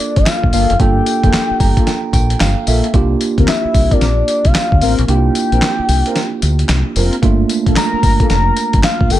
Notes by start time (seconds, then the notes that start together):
Already playing: A#3 D4 F4 A4 D5
0.16 G1 F5, kick, closed hi-hat
0.26 snare, clap, closed hi-hat, tambourine
0.43 A#1, kick
0.53 G1 A#3 F4 A4 F5, open hi-hat, tambourine
0.70 F1, closed hi-hat
0.79 G1 A#3 D4 F4 A4 G5, kick, closed hi-hat
1.06 closed hi-hat, tambourine
1.23 F1 A#3 F4 A4, kick, closed hi-hat
1.33 snare, clap, closed hi-hat, tambourine
1.51 muted fingered electric bass stroke
1.60 G1 A#5, kick, open hi-hat, tambourine
1.77 A#3 F4 A4, kick, closed hi-hat
1.87 G5, snare, closed hi-hat, tambourine
2.13 A#1 G5, kick, closed hi-hat, tambourine
2.30 closed hi-hat
2.40 G1 F5, snare, clap, closed hi-hat, tambourine
2.67 A#1 A#3 F4 A4 E5, open hi-hat, tambourine
2.84 closed hi-hat
2.93 C2 A#3 D4 F4 G4, kick, closed hi-hat
3.21 closed hi-hat, tambourine
3.38 D2 C4 F4 A#4, kick, closed hi-hat
3.47 E5, snare, clap, closed hi-hat, tambourine
3.65 muted fingered electric bass stroke
3.74 C2, kick, open hi-hat, tambourine
3.91 C4 F4 A#4 D5, kick, closed hi-hat
4.01 A#1, snare, closed hi-hat, tambourine
4.28 closed hi-hat, tambourine
4.45 C2 F5, kick, closed hi-hat
4.54 snare, clap, closed hi-hat, tambourine
4.72 D2, kick
4.81 A1 C4 F4 A#4 F5, open hi-hat, tambourine
4.99 A#1, closed hi-hat
5.08 C2 A#3 D4 E4 G4 G5, closed hi-hat
5.16 F4
5.35 closed hi-hat, tambourine
5.52 A#1 C4 F4 A#4, closed hi-hat
5.62 snare, clap, closed hi-hat, tambourine
5.79 muted fingered electric bass stroke
5.89 C2, open hi-hat, tambourine
6.05 C4 F4 A#4, closed hi-hat
6.16 snare, closed hi-hat, tambourine
6.42 D2, closed hi-hat, tambourine
6.59 closed hi-hat
6.69 C2, snare, clap, closed hi-hat, tambourine
6.96 F1 C4 F4 A#4, open hi-hat, tambourine
7.13 closed hi-hat
7.22 G1 A3 A#3 D4 F4, kick, closed hi-hat
7.49 closed hi-hat, tambourine
7.66 A#1 A#3 F4 A4, kick, closed hi-hat
7.76 A#5, snare, clap, closed hi-hat, tambourine
7.93 muted fingered electric bass stroke
8.03 G1, kick, open hi-hat, tambourine
8.20 A#3 F4 A4, kick, closed hi-hat
8.30 F1 A#5, snare, closed hi-hat, tambourine
8.57 closed hi-hat, tambourine
8.73 G1, kick, closed hi-hat
8.83 F5, snare, clap, closed hi-hat, tambourine
9.01 A#1, kick
9.10 G1 A#3 F4 A4 G5, open hi-hat, tambourine